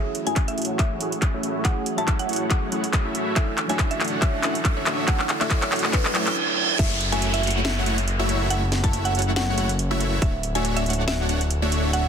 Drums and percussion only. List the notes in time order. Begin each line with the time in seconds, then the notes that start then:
0.15 closed hi-hat
0.27 closed hi-hat
0.36 kick, clap, closed hi-hat
0.48 closed hi-hat
0.58 closed hi-hat
0.62 closed hi-hat
0.65 closed hi-hat
0.79 kick, clap, closed hi-hat
1.01 closed hi-hat
1.12 closed hi-hat
1.22 kick, clap, closed hi-hat
1.43 closed hi-hat
1.65 kick, clap, closed hi-hat
1.86 closed hi-hat
1.98 closed hi-hat
2.08 kick, clap, closed hi-hat
2.19 closed hi-hat
2.29 closed hi-hat
2.33 closed hi-hat
2.36 closed hi-hat
2.50 kick, clap, closed hi-hat
2.72 closed hi-hat
2.84 closed hi-hat
2.93 kick, clap, closed hi-hat
3.15 closed hi-hat
3.36 kick, clap, closed hi-hat
3.58 clap, closed hi-hat
3.69 closed hi-hat
3.79 kick, clap, closed hi-hat
3.91 closed hi-hat
4.01 clap, closed hi-hat
4.04 closed hi-hat
4.08 closed hi-hat
4.22 kick, clap, closed hi-hat
4.43 clap, closed hi-hat
4.55 closed hi-hat
4.65 kick, clap, closed hi-hat
4.86 clap, closed hi-hat
5.08 kick, clap, closed hi-hat
5.19 clap
5.29 clap, closed hi-hat
5.41 clap, closed hi-hat
5.50 kick, clap, closed hi-hat
5.62 clap, closed hi-hat
5.72 clap, closed hi-hat
5.76 closed hi-hat
5.79 closed hi-hat
5.84 clap
5.93 kick, clap, closed hi-hat
6.05 clap
6.15 clap, closed hi-hat
6.27 clap, closed hi-hat
6.79 kick, closed hi-hat, crash
7.01 closed hi-hat
7.12 closed hi-hat
7.22 closed hi-hat
7.34 closed hi-hat
7.43 closed hi-hat
7.47 closed hi-hat
7.51 closed hi-hat
7.65 snare, closed hi-hat
7.86 closed hi-hat
7.98 closed hi-hat
8.08 closed hi-hat
8.29 closed hi-hat
8.50 closed hi-hat
8.72 snare, closed hi-hat
8.84 kick, closed hi-hat
8.93 closed hi-hat
9.05 closed hi-hat
9.15 closed hi-hat
9.19 closed hi-hat
9.22 closed hi-hat
9.36 snare, closed hi-hat
9.58 closed hi-hat
9.69 closed hi-hat
9.79 closed hi-hat
10.01 closed hi-hat
10.22 kick, closed hi-hat
10.43 closed hi-hat
10.55 closed hi-hat
10.65 closed hi-hat
10.77 closed hi-hat
10.86 closed hi-hat
10.90 closed hi-hat
10.93 closed hi-hat
11.08 snare, closed hi-hat
11.29 closed hi-hat
11.41 closed hi-hat
11.51 closed hi-hat
11.72 closed hi-hat
11.93 closed hi-hat